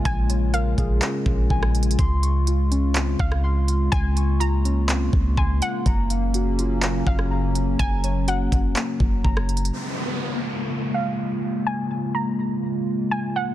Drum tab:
HH |x-----x-----x-----x-----x-----------------x-x-x-|x-----x-----x-----x-----x-----------------x-----|x-----x-----x-----x-----x-----------------x-----|x-----x-----x-----x-----x-----------------x-----|
CP |------------------------x-----------------------|------------------------x-----------------------|------------------------x-----------------------|------------------------x-----------------------|
SD |---------------------------------------r--------|---------------------------------r--------------|------------------------------------------------|---------------------------------r--------------|
BD |o-----------------o-----------o-----o-----------|o-----------------------------o-----------------|o-----------------------------o-----o-----------|o-----------------------------o-----------------|

HH |x-----x-----x-----x-----x-----------------x-x-x-|------------------------------------------------|------------------------------------------------|
CP |------------------------x-----------------------|------------------------------------------------|------------------------------------------------|
SD |---------------------------------------r--------|------------------------------------------------|------------------------------------------------|
BD |o-----------------o-----------o-----o-----------|------------------------------------------------|------------------------------------------------|